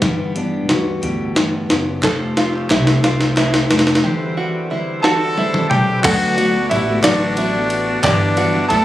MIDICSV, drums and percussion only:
0, 0, Header, 1, 2, 480
1, 0, Start_track
1, 0, Tempo, 667408
1, 21, Time_signature, 6, 3, 24, 8
1, 6364, End_track
2, 0, Start_track
2, 0, Title_t, "Drums"
2, 13, Note_on_c, 9, 38, 51
2, 13, Note_on_c, 9, 42, 57
2, 15, Note_on_c, 9, 36, 88
2, 85, Note_off_c, 9, 38, 0
2, 85, Note_off_c, 9, 42, 0
2, 87, Note_off_c, 9, 36, 0
2, 257, Note_on_c, 9, 42, 53
2, 329, Note_off_c, 9, 42, 0
2, 497, Note_on_c, 9, 38, 61
2, 497, Note_on_c, 9, 42, 45
2, 569, Note_off_c, 9, 38, 0
2, 569, Note_off_c, 9, 42, 0
2, 740, Note_on_c, 9, 42, 64
2, 811, Note_off_c, 9, 42, 0
2, 980, Note_on_c, 9, 38, 75
2, 980, Note_on_c, 9, 42, 64
2, 1052, Note_off_c, 9, 38, 0
2, 1052, Note_off_c, 9, 42, 0
2, 1223, Note_on_c, 9, 38, 73
2, 1223, Note_on_c, 9, 42, 54
2, 1295, Note_off_c, 9, 38, 0
2, 1295, Note_off_c, 9, 42, 0
2, 1461, Note_on_c, 9, 39, 90
2, 1463, Note_on_c, 9, 38, 80
2, 1463, Note_on_c, 9, 42, 70
2, 1464, Note_on_c, 9, 36, 89
2, 1533, Note_off_c, 9, 39, 0
2, 1535, Note_off_c, 9, 38, 0
2, 1535, Note_off_c, 9, 42, 0
2, 1536, Note_off_c, 9, 36, 0
2, 1705, Note_on_c, 9, 38, 86
2, 1705, Note_on_c, 9, 42, 60
2, 1777, Note_off_c, 9, 38, 0
2, 1777, Note_off_c, 9, 42, 0
2, 1825, Note_on_c, 9, 39, 26
2, 1897, Note_off_c, 9, 39, 0
2, 1945, Note_on_c, 9, 39, 95
2, 1946, Note_on_c, 9, 38, 84
2, 1946, Note_on_c, 9, 42, 55
2, 2017, Note_off_c, 9, 39, 0
2, 2018, Note_off_c, 9, 38, 0
2, 2018, Note_off_c, 9, 42, 0
2, 2065, Note_on_c, 9, 38, 98
2, 2137, Note_off_c, 9, 38, 0
2, 2185, Note_on_c, 9, 39, 27
2, 2186, Note_on_c, 9, 38, 103
2, 2186, Note_on_c, 9, 42, 83
2, 2257, Note_off_c, 9, 39, 0
2, 2258, Note_off_c, 9, 38, 0
2, 2258, Note_off_c, 9, 42, 0
2, 2306, Note_on_c, 9, 38, 85
2, 2377, Note_off_c, 9, 38, 0
2, 2424, Note_on_c, 9, 38, 104
2, 2424, Note_on_c, 9, 39, 74
2, 2424, Note_on_c, 9, 42, 64
2, 2496, Note_off_c, 9, 38, 0
2, 2496, Note_off_c, 9, 39, 0
2, 2496, Note_off_c, 9, 42, 0
2, 2544, Note_on_c, 9, 38, 106
2, 2616, Note_off_c, 9, 38, 0
2, 2665, Note_on_c, 9, 38, 107
2, 2665, Note_on_c, 9, 42, 62
2, 2726, Note_off_c, 9, 38, 0
2, 2726, Note_on_c, 9, 38, 97
2, 2737, Note_off_c, 9, 42, 0
2, 2782, Note_off_c, 9, 38, 0
2, 2782, Note_on_c, 9, 38, 86
2, 2843, Note_off_c, 9, 38, 0
2, 2843, Note_on_c, 9, 38, 88
2, 2915, Note_off_c, 9, 38, 0
2, 3626, Note_on_c, 9, 38, 60
2, 3697, Note_off_c, 9, 38, 0
2, 3866, Note_on_c, 9, 48, 75
2, 3938, Note_off_c, 9, 48, 0
2, 3985, Note_on_c, 9, 47, 78
2, 4057, Note_off_c, 9, 47, 0
2, 4105, Note_on_c, 9, 45, 85
2, 4177, Note_off_c, 9, 45, 0
2, 4344, Note_on_c, 9, 39, 110
2, 4347, Note_on_c, 9, 36, 105
2, 4347, Note_on_c, 9, 49, 115
2, 4347, Note_on_c, 9, 51, 87
2, 4416, Note_off_c, 9, 39, 0
2, 4419, Note_off_c, 9, 36, 0
2, 4419, Note_off_c, 9, 49, 0
2, 4419, Note_off_c, 9, 51, 0
2, 4587, Note_on_c, 9, 51, 66
2, 4659, Note_off_c, 9, 51, 0
2, 4826, Note_on_c, 9, 39, 29
2, 4826, Note_on_c, 9, 51, 65
2, 4898, Note_off_c, 9, 39, 0
2, 4898, Note_off_c, 9, 51, 0
2, 5062, Note_on_c, 9, 39, 95
2, 5063, Note_on_c, 9, 38, 110
2, 5063, Note_on_c, 9, 51, 98
2, 5134, Note_off_c, 9, 39, 0
2, 5135, Note_off_c, 9, 38, 0
2, 5135, Note_off_c, 9, 51, 0
2, 5185, Note_on_c, 9, 39, 31
2, 5257, Note_off_c, 9, 39, 0
2, 5300, Note_on_c, 9, 51, 73
2, 5372, Note_off_c, 9, 51, 0
2, 5426, Note_on_c, 9, 39, 28
2, 5497, Note_off_c, 9, 39, 0
2, 5538, Note_on_c, 9, 51, 65
2, 5610, Note_off_c, 9, 51, 0
2, 5778, Note_on_c, 9, 51, 93
2, 5780, Note_on_c, 9, 36, 104
2, 5784, Note_on_c, 9, 39, 109
2, 5850, Note_off_c, 9, 51, 0
2, 5852, Note_off_c, 9, 36, 0
2, 5856, Note_off_c, 9, 39, 0
2, 6019, Note_on_c, 9, 51, 65
2, 6091, Note_off_c, 9, 51, 0
2, 6141, Note_on_c, 9, 39, 33
2, 6213, Note_off_c, 9, 39, 0
2, 6258, Note_on_c, 9, 39, 30
2, 6258, Note_on_c, 9, 51, 65
2, 6330, Note_off_c, 9, 39, 0
2, 6330, Note_off_c, 9, 51, 0
2, 6364, End_track
0, 0, End_of_file